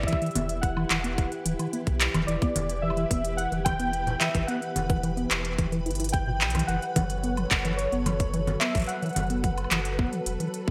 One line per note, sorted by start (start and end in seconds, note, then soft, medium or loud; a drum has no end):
0.00 6.65 E3 medium
0.00 6.64 E4 medium
0.00 6.64 G4 medium
0.00 10.71 B4 medium
0.00 kick medium
0.07 0.16 E3 loud
0.07 0.64 E5 loud
0.07 closed hi-hat medium
0.13 kick medium
0.22 0.30 E3 medium
0.22 closed hi-hat soft
0.26 closed hi-hat soft
0.31 closed hi-hat soft
0.35 0.86 E1 medium
0.35 0.48 B3 loud
0.35 closed hi-hat medium
0.35 low conga medium
0.49 closed hi-hat medium
0.61 1.41 F#5 loud
0.61 kick loud
0.61 closed hi-hat medium
0.77 0.85 E3 loud
0.77 high woodblock medium
0.90 1.27 E1 medium
0.90 0.99 E3 medium
0.90 clap loud
0.90 closed hi-hat medium
1.04 1.17 B3 loud
1.04 closed hi-hat medium
1.18 kick loud
1.18 closed hi-hat medium
1.32 closed hi-hat soft
1.45 1.56 D1 loud
1.45 1.54 E3 loud
1.45 closed hi-hat loud
1.59 1.68 E3 medium
1.59 closed hi-hat medium
1.59 high woodblock soft
1.73 1.86 B3 loud
1.73 closed hi-hat medium
1.87 2.08 B1 medium
1.87 kick loud
1.87 closed hi-hat soft
2.01 clap loud
2.01 closed hi-hat medium
2.14 2.25 E1 loud
2.14 2.23 E3 loud
2.14 closed hi-hat medium
2.14 low conga medium
2.14 high woodblock medium
2.27 2.39 E1 loud
2.27 2.36 E3 medium
2.27 2.84 D5 medium
2.27 closed hi-hat medium
2.42 2.54 B3 loud
2.42 kick loud
2.42 closed hi-hat soft
2.56 3.06 E1 medium
2.56 closed hi-hat loud
2.56 low conga medium
2.69 closed hi-hat medium
2.82 2.91 E3 loud
2.82 3.39 E5 medium
2.90 high woodblock soft
2.97 3.05 E3 medium
2.97 closed hi-hat soft
3.11 3.47 E1 medium
3.11 3.23 B3 loud
3.11 kick loud
3.11 closed hi-hat medium
3.25 closed hi-hat medium
3.37 3.50 F#5 loud
3.37 closed hi-hat medium
3.52 4.16 E1 medium
3.52 3.60 E3 loud
3.52 closed hi-hat soft
3.65 3.74 E3 medium
3.65 4.22 G5 loud
3.65 kick loud
3.65 closed hi-hat medium
3.65 low conga medium
3.65 high woodblock soft
3.79 3.92 B3 loud
3.79 closed hi-hat medium
3.93 closed hi-hat medium
4.07 closed hi-hat soft
4.07 low conga medium
4.20 4.29 E3 loud
4.20 4.49 E5 medium
4.20 clap loud
4.20 closed hi-hat medium
4.34 4.45 G1 medium
4.34 4.43 E3 medium
4.34 kick loud
4.34 closed hi-hat medium
4.47 4.61 B3 loud
4.47 4.99 F#5 medium
4.47 closed hi-hat medium
4.62 closed hi-hat soft
4.76 5.26 E1 medium
4.76 closed hi-hat medium
4.76 low conga medium
4.90 4.98 E3 loud
4.90 kick loud
4.90 closed hi-hat soft
5.03 5.12 E3 medium
5.03 closed hi-hat medium
5.17 5.30 B3 loud
5.17 closed hi-hat soft
5.31 5.87 E1 medium
5.31 clap loud
5.31 closed hi-hat medium
5.31 high woodblock soft
5.45 closed hi-hat medium
5.58 5.67 E3 loud
5.58 kick loud
5.58 closed hi-hat soft
5.72 5.81 E3 medium
5.72 closed hi-hat soft
5.86 6.42 G1 medium
5.86 5.91 E4 medium
5.86 closed hi-hat soft
5.91 closed hi-hat soft
5.95 closed hi-hat medium
6.00 6.08 E4 medium
6.00 closed hi-hat medium
6.04 closed hi-hat medium
6.09 6.70 G5 loud
6.09 closed hi-hat medium
6.14 kick loud
6.14 closed hi-hat soft
6.27 6.32 B2 medium
6.41 6.63 B1 medium
6.41 clap loud
6.41 closed hi-hat soft
6.50 closed hi-hat medium
6.55 6.63 E3 medium
6.55 closed hi-hat medium
6.55 low conga medium
6.55 high woodblock medium
6.59 closed hi-hat medium
6.67 6.79 F#1 loud
6.67 6.77 E3 medium
6.67 10.71 F#3 medium
6.67 10.71 A4 medium
6.67 8.87 C#5 medium
6.67 7.81 F#5 loud
6.67 closed hi-hat soft
6.82 closed hi-hat soft
6.96 7.46 F#1 medium
6.96 7.04 E3 loud
6.96 kick loud
6.96 closed hi-hat medium
6.96 low conga medium
7.10 closed hi-hat soft
7.24 7.39 B3 loud
7.24 closed hi-hat soft
7.37 7.46 E3 medium
7.37 closed hi-hat soft
7.37 high woodblock soft
7.51 7.88 F#1 medium
7.51 kick loud
7.51 clap loud
7.51 closed hi-hat medium
7.65 7.73 E3 loud
7.65 closed hi-hat soft
7.77 8.63 C#5 medium
7.77 closed hi-hat soft
7.92 8.56 F#1 medium
7.92 8.08 B3 loud
7.92 closed hi-hat soft
8.06 8.14 E3 medium
8.06 closed hi-hat medium
8.06 low conga medium
8.06 high woodblock soft
8.20 kick loud
8.20 closed hi-hat soft
8.34 8.42 E3 loud
8.34 closed hi-hat soft
8.47 closed hi-hat soft
8.47 low conga medium
8.60 8.76 B3 loud
8.60 8.86 E5 medium
8.60 clap loud
8.60 closed hi-hat medium
8.75 8.86 A1 medium
8.75 8.83 E3 medium
8.75 kick loud
8.75 closed hi-hat soft
8.77 closed hi-hat soft
8.79 closed hi-hat soft
8.82 closed hi-hat soft
8.84 closed hi-hat soft
8.86 9.14 F#5 loud
8.86 closed hi-hat soft
8.89 10.71 B4 medium
8.89 closed hi-hat soft
9.02 9.11 E3 loud
9.02 closed hi-hat soft
9.06 closed hi-hat soft
9.09 closed hi-hat soft
9.13 10.22 F#5 medium
9.13 closed hi-hat soft
9.16 9.67 F#1 medium
9.16 closed hi-hat medium
9.16 low conga loud
9.20 closed hi-hat soft
9.23 closed hi-hat soft
9.27 closed hi-hat soft
9.30 9.45 B3 loud
9.30 closed hi-hat soft
9.44 9.52 E3 medium
9.44 kick loud
9.44 closed hi-hat soft
9.58 closed hi-hat soft
9.58 high woodblock soft
9.64 high woodblock soft
9.71 10.08 F#1 medium
9.71 9.80 E3 loud
9.71 clap loud
9.71 closed hi-hat medium
9.71 high woodblock soft
9.78 high woodblock soft
9.85 closed hi-hat soft
9.99 10.14 B3 loud
9.99 kick loud
10.13 10.21 E3 medium
10.13 closed hi-hat soft
10.26 10.37 E1 loud
10.26 closed hi-hat medium
10.40 10.48 E3 loud
10.40 closed hi-hat soft
10.54 closed hi-hat soft
10.68 10.71 C#2 medium
10.68 10.71 B3 loud
10.68 kick loud